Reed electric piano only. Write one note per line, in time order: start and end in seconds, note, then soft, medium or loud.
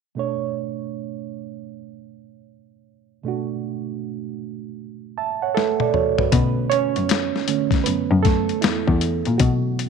0.15 3.20 B2 medium
0.15 3.21 A3 soft
0.15 3.21 D4 soft
0.19 3.22 C#5 medium
3.23 6.28 B2 medium
3.23 5.56 A3 medium
3.23 6.29 D4 medium
3.28 5.15 F#4 medium
5.18 5.41 E5 soft
5.18 5.41 A5 medium
5.42 5.56 C#5 soft
5.42 5.55 F#5 medium
5.55 6.29 A3 medium
5.55 5.80 A4 medium
5.55 5.79 B4 medium
5.55 5.79 E5 medium
5.81 5.94 A4 soft
5.81 5.94 D5 medium
5.94 6.18 F#4 soft
5.94 6.18 C#5 medium
6.19 6.56 F#4 soft
6.19 6.31 B4 soft
6.32 7.44 D3 soft
6.32 7.45 A3 soft
6.32 6.69 B3 medium
6.32 6.72 C#4 medium
6.32 6.72 B4 medium
6.70 7.48 C#4 medium
6.70 7.89 C#5 medium
7.48 7.83 D3 soft
7.48 7.83 A3 soft
7.48 7.83 C#4 soft
7.84 8.23 B3 medium
7.84 8.21 B4 medium
8.22 8.61 A3 medium
8.22 8.63 A4 medium
8.61 9.37 E3 medium
8.61 9.42 E4 medium
9.38 9.89 F#3 medium
9.38 9.89 F#4 medium